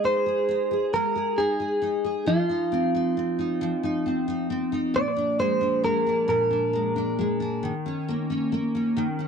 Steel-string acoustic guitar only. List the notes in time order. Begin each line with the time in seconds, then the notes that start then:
Already playing: G#3 G#4
0.04 D#4
0.26 G#4
0.49 D#4
0.71 G#4
0.94 G#3
1.16 G#4
1.38 D#4
1.60 G#4
1.82 D#4
2.04 G#4
2.26 F3
2.49 D#4
2.72 C4
2.95 D#4
3.17 C4
3.39 D#4
3.61 F3
3.83 D#4
4.06 C4
4.28 D#4
4.50 C4
4.72 D#4
4.94 A#2
5.17 D4
5.39 G#3
5.61 D4
5.84 G#3
6.07 D4
6.28 A#2
6.51 D4
6.73 G#3
6.96 D4
7.19 G#3
7.40 D4
7.63 D#3
7.86 C#4
8.08 A#3
8.30 C#4
8.52 A#3
8.75 C#4
8.97 D#3
9.19 C#4